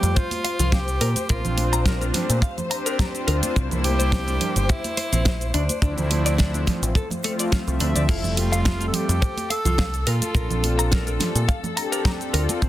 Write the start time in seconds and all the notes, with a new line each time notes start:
Already playing: G4 C5
0.03 F2, closed hi-hat, cabasa
0.16 F4 C5, kick, closed hi-hat, cabasa
0.31 open hi-hat, high conga, cabasa
0.44 F5, open hi-hat, muted conga, cabasa
0.59 C2 F4, closed hi-hat, low conga, cabasa
0.72 G4 F5, kick, snare, closed hi-hat, high conga, cabasa
0.88 closed hi-hat, cabasa
1.01 A#2 A#4, open hi-hat, cabasa
1.16 closed hi-hat, high conga, cabasa
1.29 A#1 C4 D4 F4 A#4, kick, closed hi-hat, cabasa
1.45 A#1, closed hi-hat, low conga, cabasa
1.57 open hi-hat, high conga, cabasa
1.73 A#5, closed hi-hat, muted conga, cabasa
1.86 A#4, kick, snare, closed hi-hat, cabasa
2.01 A#4, closed hi-hat, high conga, cabasa
2.14 A3 C4 D4 G4, snare, open hi-hat, low conga, cabasa
2.29 A#2, closed hi-hat, cabasa
2.42 F5, kick, closed hi-hat, cabasa
2.58 closed hi-hat, high conga, low conga, cabasa
2.71 C4 D4 G4 A#5, open hi-hat, cabasa
2.86 A#4, closed hi-hat, cabasa
2.99 A#5, kick, snare, closed hi-hat, high conga, cabasa
3.14 C4 D4 F4, closed hi-hat, cabasa
3.27 D2 A#4, open hi-hat, cabasa
3.43 closed hi-hat, muted conga, high conga, cabasa
3.55 C2 G3 A#3 C4 D4 E4, kick, closed hi-hat, cabasa
3.71 C2, closed hi-hat, low conga, cabasa
3.84 G4, open hi-hat, high conga, cabasa
3.99 C5, closed hi-hat, muted conga, cabasa
4.12 C4, kick, snare, closed hi-hat, cabasa
4.27 C4, closed hi-hat, high conga, cabasa
4.40 G3 A#3 D4 G4, open hi-hat, low conga, cabasa
4.56 G1, closed hi-hat, cabasa
4.69 E4 G4, kick, closed hi-hat, cabasa
4.84 open hi-hat, high conga, cabasa
4.97 C5, open hi-hat, muted conga, cabasa
5.12 A#1 C4, closed hi-hat, low conga, cabasa
5.25 C5, kick, snare, closed hi-hat, high conga, cabasa
5.41 closed hi-hat, cabasa
5.54 D2 D4, open hi-hat, cabasa
5.69 closed hi-hat, high conga, cabasa
5.81 D2 F3 A3 C4 D4 E4, kick, closed hi-hat, cabasa
5.98 D2, closed hi-hat, low conga, cabasa
6.11 open hi-hat, high conga, cabasa
6.26 D5, closed hi-hat, muted conga, cabasa
6.38 D4, kick, snare, closed hi-hat, cabasa
6.54 D4, closed hi-hat, high conga, cabasa
6.67 F3 A3 C4 F4, kick, snare, open hi-hat, low conga, cabasa
6.82 A1, closed hi-hat, cabasa
6.95 A4, kick, closed hi-hat, cabasa
6.97 cabasa
7.10 closed hi-hat, high conga, low conga, cabasa
7.23 F3 A3 C4 F4, open hi-hat, cabasa
7.38 D5, closed hi-hat, cabasa
7.52 F4, kick, snare, closed hi-hat, high conga, cabasa
7.67 C2 F3 A3 C4 E5, closed hi-hat, cabasa
7.80 D2 D4, open hi-hat, cabasa
7.95 D2 D5, closed hi-hat, muted conga, high conga, cabasa
8.08 F1 G3 A3 C4 E4 F4 A4, kick, closed hi-hat, crash, cabasa
8.23 F1, closed hi-hat, low conga, cabasa
8.37 F4, open hi-hat, high conga, cabasa
8.52 F5, closed hi-hat, muted conga, cabasa
8.65 F4, kick, snare, closed hi-hat, cabasa
8.80 F4, closed hi-hat, high conga, cabasa
8.88 A4
8.93 G3 A3 C4 F4 G4, open hi-hat, low conga, cabasa
9.09 F2, closed hi-hat, cabasa
9.22 C5, kick, closed hi-hat, cabasa
9.37 open hi-hat, high conga, cabasa
9.50 A4 F5, open hi-hat, muted conga, cabasa
9.65 C2 F4, closed hi-hat, low conga, cabasa
9.78 F5, kick, snare, closed hi-hat, cabasa
9.94 closed hi-hat, cabasa
10.07 A#2 F4 A#4, open hi-hat, cabasa
10.22 closed hi-hat, high conga, cabasa
10.35 A#1 C4 D4 F4 A#4, kick, closed hi-hat, cabasa
10.50 A#1, closed hi-hat, low conga, cabasa
10.63 open hi-hat, high conga, cabasa
10.79 A#5, closed hi-hat, muted conga, cabasa
10.92 A#4, kick, snare, closed hi-hat, cabasa
11.07 A#4, closed hi-hat, high conga, cabasa
11.20 A3 C4 D4 G4, snare, open hi-hat, low conga, cabasa
11.35 A#2, closed hi-hat, cabasa
11.48 F5, kick, closed hi-hat, cabasa
11.63 closed hi-hat, high conga, low conga, cabasa
11.77 C4 D4 G4 A#5, open hi-hat, cabasa
11.92 A#4, closed hi-hat, cabasa
12.05 A#5, kick, snare, closed hi-hat, high conga, cabasa
12.20 C4 D4 F4, closed hi-hat, cabasa
12.34 D2 A#4, open hi-hat, cabasa
12.49 closed hi-hat, muted conga, high conga, cabasa
12.61 C2 G3 A#3 C4 D4 E4, kick, closed hi-hat, cabasa